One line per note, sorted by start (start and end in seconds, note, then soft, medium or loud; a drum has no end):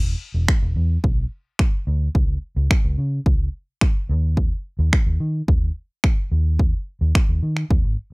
0.00 0.13 E1 medium
0.34 0.45 E1 medium
0.48 finger snap loud
0.48 kick loud
0.62 0.72 E1 loud
0.76 0.96 E2 loud
1.04 1.24 B1 medium
1.04 kick loud
1.59 finger snap loud
1.59 kick loud
1.87 2.08 D2 medium
2.15 2.35 C#2 medium
2.15 kick loud
2.56 2.67 C#2 loud
2.71 finger snap loud
2.71 kick loud
2.84 2.95 C#2 medium
2.98 3.19 C#3 medium
3.26 3.46 C#2 loud
3.26 kick loud
3.81 finger snap loud
3.81 kick loud
4.09 4.50 D#2 loud
4.37 kick medium
4.79 4.89 D#2 loud
4.93 finger snap loud
4.93 kick loud
5.06 5.17 D#2 loud
5.20 5.41 D#3 medium
5.48 5.69 D#2 medium
5.48 kick loud
6.04 finger snap loud
6.04 kick loud
6.32 6.72 D#2 medium
6.59 kick loud
7.01 7.11 D#2 medium
7.15 finger snap loud
7.15 kick loud
7.29 7.39 D#2 medium
7.43 7.63 D#3 medium
7.57 finger snap medium
7.70 7.81 D#2 medium
7.70 kick loud
7.84 7.95 G#1 medium